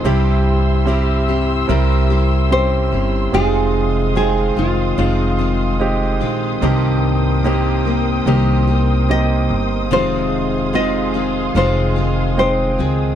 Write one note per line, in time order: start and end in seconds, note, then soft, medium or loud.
0.00 9.87 C6 soft
0.00 3.30 E6 medium
0.04 1.65 C2 medium
0.04 1.24 G2 medium
0.04 0.87 C3 medium
0.04 0.83 G3 medium
0.04 0.86 G3 medium
0.04 0.83 C4 medium
0.04 0.87 C4 medium
0.04 0.83 E4 medium
0.04 0.87 E4 medium
0.04 3.30 G4 medium
0.04 0.83 G4 medium
0.04 0.88 G4 medium
0.04 3.30 E5 medium
0.85 1.64 G3 medium
0.85 1.28 G3 medium
0.85 1.65 C4 medium
0.85 1.28 C4 medium
0.85 1.65 E4 medium
0.85 1.28 E4 medium
0.85 1.65 G4 medium
0.85 1.27 G4 medium
1.28 1.69 C4 soft
1.28 1.69 E4 soft
1.28 1.69 G4 soft
1.68 2.89 C2 medium
1.68 2.10 C3 medium
1.68 2.47 G3 medium
1.68 2.10 G3 medium
1.68 2.47 C4 medium
1.68 2.11 C4 medium
1.68 2.47 E4 medium
1.68 2.10 E4 medium
1.68 2.09 G4 medium
1.68 2.47 A#4 medium
2.10 2.94 C4 soft
2.10 2.92 E4 soft
2.10 2.91 G4 soft
2.50 3.29 G3 medium
2.50 3.29 C4 medium
2.50 2.58 C#4 soft
2.50 3.30 G4 medium
2.50 3.34 C5 medium
2.58 3.33 E4 soft
2.92 3.31 G1 medium
2.92 3.34 C4 soft
2.92 3.34 E4 soft
2.92 3.33 G4 soft
3.32 4.53 F1 medium
3.32 4.16 F2 medium
3.32 4.53 C3 medium
3.32 4.16 C3 medium
3.32 4.15 D#3 medium
3.32 3.39 G3 soft
3.32 6.59 G#3 medium
3.32 4.15 G#3 medium
3.32 4.11 C4 medium
3.32 4.16 C4 medium
3.32 4.12 D#4 medium
3.32 4.12 F4 medium
3.32 4.16 F4 medium
3.32 4.16 G#4 medium
3.32 6.59 F5 medium
3.32 13.15 D#6 medium
3.38 4.14 G#3 medium
4.15 4.57 D#3 soft
4.15 4.94 G#3 soft
4.15 4.57 G#3 soft
4.15 4.94 C4 soft
4.15 4.56 C4 medium
4.15 4.94 D#4 soft
4.15 4.55 F4 medium
4.15 4.55 G#4 medium
4.15 4.94 G5 medium
4.56 4.95 F1 medium
4.56 4.97 D#3 soft
4.56 4.97 G#3 soft
4.56 4.98 C4 soft
4.56 4.98 F4 soft
4.56 6.18 F4 medium
4.97 6.17 F1 medium
4.97 5.39 F2 medium
4.97 5.39 C3 medium
4.97 5.39 D#3 medium
4.97 5.76 G#3 medium
4.97 5.39 G#3 medium
4.97 5.76 C4 soft
4.97 5.38 C4 medium
4.97 5.76 D#4 soft
4.97 5.77 F4 medium
4.97 5.37 F4 medium
5.38 6.22 D#3 soft
5.38 6.21 G#3 soft
5.38 6.21 C4 soft
5.38 6.20 F4 soft
5.80 6.58 G#3 medium
5.80 6.58 C4 medium
5.80 6.58 D#4 medium
5.80 6.59 G4 medium
6.21 6.59 A#1 medium
6.21 6.61 D#3 soft
6.21 6.62 G#3 soft
6.21 6.62 C4 soft
6.21 6.62 F4 soft
6.61 8.22 C2 medium
6.61 7.82 G2 medium
6.61 7.44 C3 medium
6.61 7.44 D#3 medium
6.61 7.40 A#3 medium
6.61 7.44 A#3 medium
6.61 7.41 C4 medium
6.61 7.45 C4 medium
6.61 7.41 D#4 medium
6.61 7.41 G4 medium
6.61 7.45 G4 medium
6.61 9.88 A#4 medium
6.61 9.87 G5 soft
7.44 7.86 D#3 medium
7.44 8.22 A#3 medium
7.44 7.86 A#3 medium
7.44 8.23 C4 medium
7.44 7.85 C4 medium
7.44 8.23 D#4 medium
7.44 8.23 G4 medium
7.44 7.84 G4 medium
7.85 8.26 A#3 soft
7.85 8.27 C4 soft
7.85 8.27 G4 soft
8.26 9.46 C2 medium
8.26 8.68 C3 medium
8.26 8.68 D#3 medium
8.26 9.05 A#3 medium
8.26 8.68 A#3 medium
8.26 9.05 C4 medium
8.26 8.68 C4 medium
8.26 9.05 D#4 medium
8.26 9.05 G4 medium
8.26 8.66 G4 medium
8.68 9.91 A#3 soft
8.68 9.91 C4 soft
8.68 9.91 G4 medium
9.09 9.87 A#3 medium
9.09 9.87 C4 medium
9.09 9.87 D#4 medium
9.09 9.87 G4 medium
9.09 9.88 D#5 medium
9.50 9.91 G1 medium
9.91 11.51 F1 medium
9.91 10.73 F2 medium
9.91 10.73 C3 medium
9.91 11.11 C3 medium
9.91 10.73 D#3 medium
9.91 10.69 G#3 medium
9.91 10.72 G#3 medium
9.91 10.73 C4 medium
9.91 10.70 C4 medium
9.91 10.70 D#4 medium
9.91 10.74 F4 medium
9.91 10.70 F4 medium
9.91 13.15 G#4 medium
9.91 10.75 C5 medium
9.91 13.15 F5 medium
9.91 13.15 C6 soft
10.73 11.14 D#3 soft
10.73 11.52 G#3 medium
10.73 11.15 G#3 soft
10.73 11.52 C4 soft
10.73 11.14 C4 medium
10.73 11.52 D#4 soft
10.73 11.52 F4 medium
10.73 11.13 F4 medium
10.73 11.57 D#5 medium
11.14 11.55 D#3 soft
11.14 11.55 G#3 soft
11.14 11.55 C4 soft
11.14 11.55 F4 soft
11.55 12.75 F1 medium
11.55 11.96 F2 medium
11.55 11.97 C3 medium
11.55 11.97 D#3 medium
11.55 12.33 G#3 medium
11.55 11.96 G#3 medium
11.55 12.34 C4 soft
11.55 11.96 C4 medium
11.55 12.34 D#4 medium
11.55 11.95 F4 medium
11.55 12.34 F4 medium
11.55 12.38 C5 medium
11.96 12.80 D#3 soft
11.96 12.78 G#3 soft
11.96 12.78 C4 soft
11.96 12.77 F4 soft
12.37 13.15 G#3 medium
12.37 13.15 C4 medium
12.37 13.15 D#4 medium
12.37 12.77 C5 medium
12.37 13.15 G5 medium
12.78 13.15 C#2 medium
12.78 13.15 D#3 soft
12.78 13.15 G#3 soft
12.78 13.15 C4 soft
12.78 13.15 F4 soft
12.78 13.15 G#4 medium